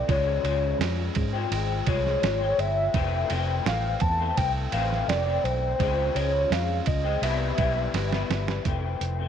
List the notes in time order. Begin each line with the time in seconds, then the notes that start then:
0.08 C#2 C#3 F3 G#3 C#5, kick, ride
0.44 C#2 C#3 F3 G#3, ride
0.79 F2, snare, ride
1.15 G#2, kick, ride
1.33 F3 G#3 C4
1.51 G#1, ride
1.86 C2 F3 G#3 C#5, kick, ride
2.07 snare
2.23 G#1, snare, ride
2.40 F3 G#3 C4
2.58 G1 E5, ride
2.94 F1 F2 E3 A3 C4, kick, ride
3.30 F1 F2 E3 A3 C4, ride
3.66 A1 F5, snare, ride
4.00 E2 A5, kick, ride
4.19 E3 A3 C4
4.37 C2 G5, kick, ride
4.72 A1 F2 E3 A3 C4 F5, ride
4.92 snare
5.08 F1 D5, snare, ride
5.26 E3 A3 C4
5.44 B1 C5, ride
5.79 C#2 C#3 F3 G#3 C4, kick, ride
6.15 C#2 C#3 F3 G#3 C#5, ride
6.50 F2 F5, snare, ride
6.86 C#2 D#5, kick, ride
7.04 F3 G#3 C4
7.22 C2 C3 G3 B3 E4 E5, ride
7.58 B1 G3 B3 E4, kick, ride
7.94 G1, snare, ride
8.12 G3 B3 E4, snare
8.30 G1, snare, ride
8.48 snare
8.65 F1 F2 E3 A3 C4, kick, closed hi-hat
9.01 F1, closed hi-hat
9.18 E3 A3 C4